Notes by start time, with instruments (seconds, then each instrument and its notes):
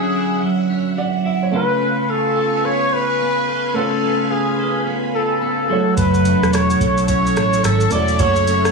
Already playing: clean electric guitar D3 F#3 C#4 E4, upright piano F#3 D4 E4 C#5, trumpet G#4, string machine E5 F#5
0.15 clean electric guitar E4
0.42 clean electric guitar F#3
0.70 clean electric guitar C#4
0.98 clean electric guitar F#3, upright piano D5 F#5
1.25 clean electric guitar E4, upright piano E5
1.43 upright piano C#5
1.51 clean electric guitar C#3 A4, upright piano A3 C#4 F4, string machine B4 F5 G#5 C#6
1.55 trumpet B4, upright piano B4
1.81 clean electric guitar B3
2.09 clean electric guitar F4, trumpet A4
2.37 clean electric guitar A4
2.65 clean electric guitar B3, trumpet C#5
2.92 clean electric guitar F4, trumpet B4
3.21 clean electric guitar B3
3.48 clean electric guitar A4
3.74 clean electric guitar C#3 A4, upright piano A3 C#4 F4, trumpet A4, string machine B5
3.78 upright piano B4
4.03 clean electric guitar B3
4.31 clean electric guitar F4, trumpet G#4
4.59 clean electric guitar A4
4.87 clean electric guitar B3
5.14 clean electric guitar F4, trumpet A4
5.42 clean electric guitar B3
5.68 clean electric guitar F#3, upright piano G#3 E4 F#4, string machine A4 E5 F#5 C#6
5.72 upright piano A3 C#5
5.97 fingered electric bass F#1, clean electric guitar F#3 A4, trumpet B4, kick, closed hi-hat, shaker
6.14 shaker
6.25 clean electric guitar C#4, closed hi-hat, shaker
6.42 fingered electric bass E1, cross-stick, shaker
6.53 clean electric guitar E4, trumpet C#5, cross-stick, closed hi-hat, shaker
6.70 shaker
6.81 fingered electric bass B1, clean electric guitar A4, kick, closed hi-hat, shaker
6.97 shaker
7.08 clean electric guitar C#4, trumpet C#5, kick, closed hi-hat, shaker
7.27 shaker
7.37 fingered electric bass A1, clean electric guitar E4, cross-stick, closed hi-hat, shaker
7.53 shaker
7.64 fingered electric bass G#1, clean electric guitar C#4, trumpet A4, cross-stick, closed hi-hat, shaker
7.80 shaker
7.90 fingered electric bass E1, upright piano A3 E4 F#4, clean electric guitar A4, trumpet D5, closed hi-hat, shaker
7.95 upright piano C#5
8.08 shaker
8.19 fingered electric bass F#1, clean electric guitar F#3 A4, trumpet C#5, kick, closed hi-hat, shaker
8.36 shaker
8.47 clean electric guitar C#4, closed hi-hat, shaker
8.65 cross-stick, shaker